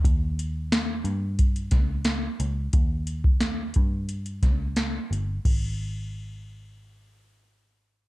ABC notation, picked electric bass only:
X:1
M:4/4
L:1/8
Q:1/4=89
K:Ebmix
V:1 name="Picked electric bass" clef=bass
E,,3 G,,2 D,,2 D,, | E,,3 G,,2 D,,2 G,,, | A,,,8 |]